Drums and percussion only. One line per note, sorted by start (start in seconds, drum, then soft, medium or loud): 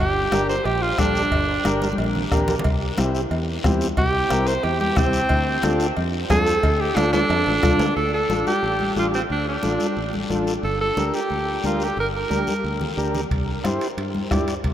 0.00 long guiro medium
0.32 bombo rim medium
0.32 cowbell medium
0.32 high conga medium
0.32 short guiro medium
0.49 short guiro medium
0.65 cowbell medium
0.65 high conga soft
0.65 long guiro medium
0.98 bombo low medium
0.98 bombo rim medium
0.98 cowbell medium
0.98 high conga medium
0.98 short guiro medium
1.15 short guiro medium
1.32 bombo low medium
1.32 cowbell loud
1.32 long guiro medium
1.65 bombo rim medium
1.65 cowbell medium
1.65 high conga medium
1.65 short guiro medium
1.82 high conga medium
1.82 short guiro medium
1.93 high conga medium
1.98 cowbell medium
1.98 long guiro medium
2.04 high conga medium
2.15 low conga medium
2.32 bombo low medium
2.32 bombo rim medium
2.32 cowbell medium
2.32 short guiro medium
2.37 low conga medium
2.48 low conga loud
2.48 short guiro medium
2.59 low conga loud
2.64 bombo low medium
2.64 cowbell loud
2.64 high conga soft
2.64 long guiro medium
2.98 bombo rim medium
2.98 cowbell medium
2.98 high conga medium
2.98 short guiro medium
3.15 short guiro medium
3.31 cowbell medium
3.31 high conga soft
3.31 long guiro medium
3.64 bombo low medium
3.64 bombo rim medium
3.64 cowbell medium
3.64 high conga medium
3.64 low timbale medium
3.64 short guiro medium
3.81 short guiro medium
3.97 bombo low medium
3.97 cowbell loud
3.97 high conga soft
3.97 long guiro medium
4.30 bombo rim medium
4.30 cowbell medium
4.30 high conga loud
4.30 short guiro medium
4.47 short guiro medium
4.63 cowbell medium
4.63 high conga soft
4.63 long guiro medium
4.81 high conga medium
4.96 bombo low medium
4.96 bombo rim medium
4.96 cowbell medium
4.96 high conga medium
4.96 low conga medium
4.96 short guiro medium
5.13 short guiro medium
5.29 bombo low medium
5.29 cowbell loud
5.29 high conga soft
5.29 long guiro medium
5.63 bombo rim medium
5.63 cowbell medium
5.63 high conga loud
5.63 short guiro medium
5.80 short guiro medium
5.97 cowbell medium
5.97 high conga soft
5.97 long guiro medium
6.30 bombo low medium
6.30 bombo rim medium
6.30 cowbell medium
6.30 high conga medium
6.30 low timbale medium
6.30 short guiro medium
6.47 short guiro medium
6.63 bombo low medium
6.63 cowbell loud
6.63 long guiro medium
6.96 bombo rim medium
6.96 cowbell medium
6.96 high conga medium
6.96 high timbale medium
6.96 short guiro medium
7.13 high conga medium
7.13 high timbale loud
7.13 short guiro medium
7.29 cowbell medium
7.29 high conga soft
7.29 high timbale medium
7.29 long guiro medium
7.46 low timbale medium
7.63 bombo low medium
7.63 bombo rim medium
7.63 cowbell medium
7.63 high conga medium
7.63 low conga medium
7.63 short guiro medium
7.79 low timbale loud
7.79 short guiro medium
7.96 high conga soft
7.96 long guiro medium
8.30 high conga medium
8.30 short guiro medium
8.47 high conga medium
8.47 short guiro medium
8.64 high conga soft
8.64 long guiro medium
8.80 high conga medium
8.96 high conga medium
8.96 short guiro medium
9.14 short guiro medium
9.30 high conga soft
9.30 long guiro medium
9.63 high conga medium
9.63 short guiro medium
9.80 high conga medium
9.80 short guiro medium
9.97 high conga soft
9.97 long guiro medium
10.13 high conga medium
10.30 high conga medium
10.30 short guiro medium
10.47 short guiro medium
10.63 high conga soft
10.63 long guiro medium
10.97 high conga medium
10.97 short guiro medium
11.14 short guiro medium
11.30 high conga soft
11.30 long guiro medium
11.64 high conga medium
11.64 short guiro medium
11.80 short guiro medium
11.97 high conga soft
11.97 long guiro medium
12.31 high conga medium
12.31 short guiro medium
12.47 high conga medium
12.47 short guiro medium
12.65 long guiro medium
12.81 low conga medium
12.98 short guiro medium
13.15 low conga medium
13.15 short guiro medium
13.31 bombo low medium
13.31 high conga soft
13.31 high timbale medium
13.31 long guiro medium
13.64 bombo rim medium
13.64 high conga medium
13.64 high timbale medium
13.64 short guiro medium
13.81 high timbale medium
13.81 short guiro medium
13.98 high conga soft
13.98 high timbale medium
13.98 long guiro medium
14.15 high conga medium
14.31 bombo low medium
14.31 bombo rim medium
14.31 high conga medium
14.31 high timbale medium
14.31 low timbale medium
14.31 short guiro medium
14.48 high timbale medium
14.48 short guiro medium
14.64 bombo low medium
14.64 high conga soft
14.64 high timbale medium
14.64 long guiro medium